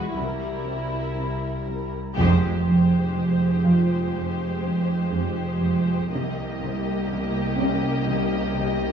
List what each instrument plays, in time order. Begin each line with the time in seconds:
Already playing: double bass section E1, cello section E2, viola section G#3, violin section F#4 B4, felt piano F#4 F#5
0.16 double bass section C2, cello section C2 C3, viola section G3, violin section E4 A#4
0.67 cello section C4
1.17 cello section C3
1.68 cello section C3
2.16 double bass section F1, cello section F2, timpani F2, viola section G#3, violin section G4 C5, impact
2.67 cello section F2
3.15 cello section F2
3.64 cello section F2, felt piano F4 F5
4.14 cello section F2
4.63 cello section F2
5.12 cello section F2
5.61 cello section F2
6.10 double bass section C2, cello section C2 C3, viola section A#3, violin section G4 D#5
6.61 cello section C3
7.09 cello section C3
7.57 cello section C3, felt piano C#4 C#5
8.06 cello section C3
8.56 cello section C3